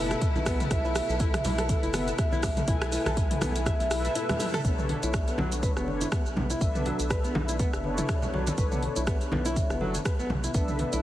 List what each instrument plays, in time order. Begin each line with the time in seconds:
Already playing: analog synth bass F#1, string section B2 A3 E4, analog polysynth E4 A4 B4 E5
0.11 nylon-string guitar A4, cross-stick, closed hi-hat, shaker
0.22 kick, closed hi-hat, shaker
0.35 analog synth bass B1, nylon-string guitar E4, high conga, low conga, shaker
0.46 nylon-string guitar B3, analog polysynth E4 A4 B4 E5, kick, cross-stick, open hi-hat, shaker
0.60 closed hi-hat, mid tom, shaker
0.71 analog synth bass B1, analog polysynth E4 A4 B4 E5, nylon-string guitar E5, kick, cross-stick, closed hi-hat, shaker
0.85 nylon-string guitar E4, shaker
0.96 cross-stick, open hi-hat, shaker
1.09 analog synth bass B1, nylon-string guitar A4, shaker
1.20 nylon-string guitar E4, kick, closed hi-hat, shaker
1.34 cross-stick, closed hi-hat, mid tom, shaker
1.45 analog synth bass B1, nylon-string guitar E4, open hi-hat, low conga, shaker
1.58 nylon-string guitar A4, cross-stick, closed hi-hat, shaker
1.69 kick, closed hi-hat, high conga, shaker
1.83 analog synth bass F#1, nylon-string guitar E4, closed hi-hat, shaker
1.94 nylon-string guitar B3, analog polysynth E4 A4 B4 E5, cross-stick, open hi-hat, high conga, shaker
2.08 closed hi-hat, shaker
2.18 nylon-string guitar E5, kick, cross-stick, closed hi-hat, shaker
2.32 analog synth bass B1, nylon-string guitar E4, high conga, shaker
2.43 kick, cross-stick, open hi-hat, low conga, shaker
2.57 nylon-string guitar A4, closed hi-hat, mid tom, high conga, shaker
2.68 analog synth bass B1, nylon-string guitar E4, analog polysynth E4 A4 B4 G#5, kick, closed hi-hat, shaker
2.82 cross-stick, closed hi-hat, shaker
2.92 nylon-string guitar E4, open hi-hat, shaker
3.05 analog synth bass B1, nylon-string guitar A4, cross-stick, closed hi-hat, high conga, shaker
3.17 kick, closed hi-hat, shaker
3.31 nylon-string guitar E4, closed hi-hat, mid tom, shaker
3.41 analog synth bass B1, nylon-string guitar B3, cross-stick, open hi-hat, high conga, low conga, shaker
3.56 closed hi-hat, shaker
3.66 nylon-string guitar E5, kick, cross-stick, closed hi-hat, high conga, shaker
3.80 analog synth bass B1, nylon-string guitar E4, closed hi-hat, shaker
3.91 analog polysynth E4 A4 B4 E5, cross-stick, open hi-hat, shaker
4.05 nylon-string guitar A4, closed hi-hat, shaker
4.15 nylon-string guitar E4, closed hi-hat, shaker
4.29 cross-stick, closed hi-hat, high conga, low conga, shaker
4.40 nylon-string guitar E4, analog polysynth E4 A4 B4 E5, open hi-hat, high tom, shaker
4.54 nylon-string guitar A4, cross-stick, closed hi-hat, mid tom, shaker
4.64 analog synth bass B1, nylon-string guitar B3, analog polysynth D4 A4 B4 C#5, kick, closed hi-hat, shaker
4.79 mid tom, shaker
4.89 nylon-string guitar B3, closed hi-hat, high conga
5.03 analog synth bass B1, nylon-string guitar E4, closed hi-hat, shaker
5.14 kick, cross-stick, closed hi-hat, shaker
5.28 nylon-string guitar B3, closed hi-hat, shaker
5.38 analog synth bass B1, nylon-string guitar F#3, high conga, low conga
5.52 closed hi-hat, shaker
5.63 nylon-string guitar B4, kick, closed hi-hat, high conga, shaker
5.77 analog synth bass F#1, nylon-string guitar B3, cross-stick, shaker
5.87 analog polysynth D4 A4 B4 C#5, high conga
6.01 nylon-string guitar E4, closed hi-hat, high conga, shaker
6.12 nylon-string guitar B3, kick, cross-stick, closed hi-hat, shaker
6.26 analog synth bass B1, shaker
6.36 nylon-string guitar B3, mid tom, high conga, low conga
6.50 nylon-string guitar E4, closed hi-hat, shaker
6.61 analog synth bass B1, analog polysynth D4 A4 B4 E5, kick, closed hi-hat, shaker
6.75 nylon-string guitar B3, mid tom, shaker
6.85 nylon-string guitar F#3, closed hi-hat, high conga
7.00 analog synth bass B1, closed hi-hat, shaker
7.10 nylon-string guitar B4, kick, cross-stick, closed hi-hat, shaker
7.24 nylon-string guitar B3, closed hi-hat, shaker
7.35 analog synth bass B1, high conga, low conga
7.49 nylon-string guitar E4, closed hi-hat, shaker
7.59 nylon-string guitar B3, kick, closed hi-hat, high conga, shaker
7.73 analog synth bass F#1, cross-stick, shaker
7.84 nylon-string guitar B3, analog polysynth D4 A4 B4 C#5, high conga
7.98 nylon-string guitar E4, closed hi-hat, mid tom, shaker
8.09 kick, cross-stick, closed hi-hat, shaker
8.22 analog synth bass B1, nylon-string guitar B3, low conga, shaker
8.33 nylon-string guitar F#3, analog polysynth D4 A4 B4 C#5, high conga
8.47 closed hi-hat, high conga, shaker
8.58 analog synth bass B1, analog polysynth D4 A4 B4 C#5, nylon-string guitar B4, kick, closed hi-hat, shaker
8.72 nylon-string guitar B3, mid tom, shaker
8.83 closed hi-hat, high conga
8.96 analog synth bass B1, nylon-string guitar E4, closed hi-hat, shaker
9.07 nylon-string guitar B3, kick, cross-stick, closed hi-hat, shaker
9.21 closed hi-hat, shaker
9.32 analog synth bass B1, nylon-string guitar B3, high conga, low conga
9.46 nylon-string guitar E4, closed hi-hat, shaker
9.56 kick, closed hi-hat, high conga, shaker
9.70 analog synth bass F#1, nylon-string guitar B3, cross-stick, shaker
9.81 nylon-string guitar F#3, analog polysynth D4 A4 B4 C#5, high conga
9.95 closed hi-hat, high conga, shaker
10.05 nylon-string guitar B4, kick, cross-stick, closed hi-hat, shaker
10.19 analog synth bass B1, nylon-string guitar B3, shaker
10.30 mid tom, high conga, low conga
10.44 nylon-string guitar E4, closed hi-hat, shaker
10.54 analog synth bass B1, nylon-string guitar B3, analog polysynth D4 A4 B4 E5, kick, closed hi-hat, shaker
10.68 mid tom, shaker
10.79 nylon-string guitar B3, closed hi-hat, high conga
10.93 analog synth bass B1, nylon-string guitar E4, closed hi-hat, shaker